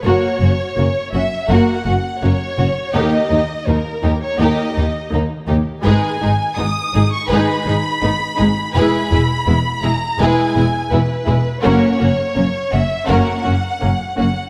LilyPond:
<<
  \new Staff \with { instrumentName = "Violin section" } { \time 4/4 \key fis \mixolydian \tempo 4 = 83 cis''4. e''8 fis''4 cis''4 | dis''4 ais'8. cis''16 dis''4 r4 | gis''4 dis'''8. cis'''16 b''2 | b''4. ais''8 gis''4 b'4 |
cis''4. e''8 fis''4. fis''8 | }
  \new Staff \with { instrumentName = "Violin section" } { \time 4/4 \key fis \mixolydian <fis' ais'>8 <cis' fis'>8 <ais cis'>8 <cis' fis'>8 <fis' ais'>8 <cis' fis'>8 <ais cis'>8 <cis' fis'>8 | <g' ais'>8 <dis' g'>8 <ais dis'>8 <dis' g'>8 <g' ais'>8 <dis' g'>8 <ais dis'>8 <dis' g'>8 | <gis' b'>8 <dis' gis'>8 <b dis'>8 <dis' gis'>8 <gis' b'>8 <dis' gis'>8 <b dis'>8 <dis' gis'>8 | <gis' b'>8 <e' gis'>8 <b e'>8 <e' gis'>8 <gis' b'>8 <e' gis'>8 <b e'>8 <e' gis'>8 |
<fis' ais'>8 <cis' fis'>8 <ais cis'>8 <cis' fis'>8 <fis' ais'>8 <cis' fis'>8 <ais cis'>8 <cis' fis'>8 | }
  \new Staff \with { instrumentName = "Viola section" } { \time 4/4 \key fis \mixolydian <ais fis'>8 <ais fis'>8 <ais fis'>8 <ais fis'>8 <ais fis'>8 <ais fis'>8 <ais fis'>8 <ais fis'>8 | <ais dis'>8 <ais dis'>8 <ais dis'>8 <ais dis'>8 <ais dis'>8 <ais dis'>8 <ais dis'>8 <ais dis'>8 | <gis dis'>8 <gis dis'>8 <gis dis'>8 <gis dis'>8 <gis dis'>8 <gis dis'>8 <gis dis'>8 <gis dis'>8 | <gis e'>8 <gis e'>8 <gis e'>8 <gis e'>8 <gis e'>8 <gis e'>8 <gis e'>8 <gis e'>8 |
<ais cis'>8 <ais cis'>8 <ais cis'>8 <ais cis'>8 <ais cis'>8 <ais cis'>8 <ais cis'>8 <ais cis'>8 | }
  \new Staff \with { instrumentName = "Cello section" } { \clef bass \time 4/4 \key fis \mixolydian fis,8 fis,8 fis,8 fis,8 fis,8 fis,8 fis,8 fis,8 | dis,8 dis,8 dis,8 dis,8 dis,8 dis,8 dis,8 dis,8 | gis,8 gis,8 gis,8 gis,8 gis,8 gis,8 gis,8 gis,8 | e,8 e,8 e,8 e,8 e,8 e,8 e,8 e,8 |
fis,8 fis,8 fis,8 fis,8 fis,8 fis,8 fis,8 fis,8 | }
  \new Staff \with { instrumentName = "Double bass section" } { \clef bass \time 4/4 \key fis \mixolydian fis,,8 fis,,8 fis,,8 fis,,8 fis,,8 fis,,8 fis,,8 fis,,8 | dis,8 dis,8 dis,8 dis,8 dis,8 dis,8 dis,8 dis,8 | gis,,8 gis,,8 gis,,8 gis,,8 gis,,8 gis,,8 gis,,8 gis,,8 | e,,8 e,,8 e,,8 e,,8 e,,8 e,,8 e,,8 e,,8 |
fis,,8 fis,,8 fis,,8 fis,,8 fis,,8 fis,,8 fis,,8 fis,,8 | }
>>